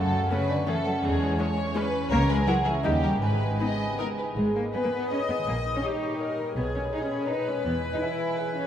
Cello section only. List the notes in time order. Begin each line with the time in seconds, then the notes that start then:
Already playing: F#3
0.32 C#3
0.49 D3
0.67 E3
0.85 F#3
1.04 G#3
2.11 A#3
2.29 G#3
2.47 F#3
2.66 E3
2.84 D#3
3.03 G3
3.22 G#3
4.37 G#3
4.56 A#3
4.75 B3
4.84 A#3
4.93 B3
5.12 C#4
5.29 B3
5.48 A#3
5.76 C#4
5.84 D#4
6.57 B3
6.76 C#4
6.94 D#4
7.03 C#4
7.11 C#4
7.30 D#4
7.48 C#4
7.66 B3
7.94 D#4
8.02 E4
8.56 C#4